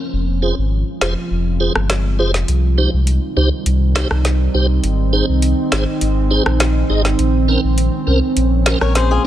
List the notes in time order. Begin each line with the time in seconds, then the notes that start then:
Already playing: F3 A#3 C4 C#4
0.13 F1 C3 F3 G#3 F4
0.42 F4 G#4 C5
0.58 G#1
1.01 F1 F4 G#4 C5, finger snap, snare
1.31 F1
1.60 F4 G#4 C5
1.76 G1, cross-stick
1.90 finger snap, snare
2.19 F1 F4 G#4 C5
2.34 snare
2.48 C2 D#3 G3 C4 D#4, closed hi-hat
2.78 D#4 G4 C5
2.93 C2
3.07 closed hi-hat
3.37 C#2 D#4 G4 C5
3.66 C2, closed hi-hat
3.95 D#4 G4 C5, finger snap, snare
4.11 C2, cross-stick
4.25 snare, closed hi-hat
4.54 C2 D#4 G4 C5
4.84 G#1 D#3 G#3, closed hi-hat
5.13 D#4 G#4 C5
5.29 C2
5.42 closed hi-hat
5.72 G#1 D#4 G#4 C5, finger snap, snare
6.01 G#1, closed hi-hat
6.31 D#4 G#4 C5
6.46 A#1, cross-stick
6.60 finger snap, snare, closed hi-hat
6.90 G#1 D#4 G#4 D#5
7.05 snare
7.19 A#1 F3 A#3 C#4, closed hi-hat
7.48 C#4 A#4 C5
7.64 A#1
7.78 closed hi-hat
8.07 C2 C#4 A#4 C5
8.37 A#1, closed hi-hat
8.66 C#4 A#4 C5, finger snap, snare
8.81 A#1 A#4 C#5, cross-stick
8.95 G#4 C5, snare, closed hi-hat
9.11 F4 G#4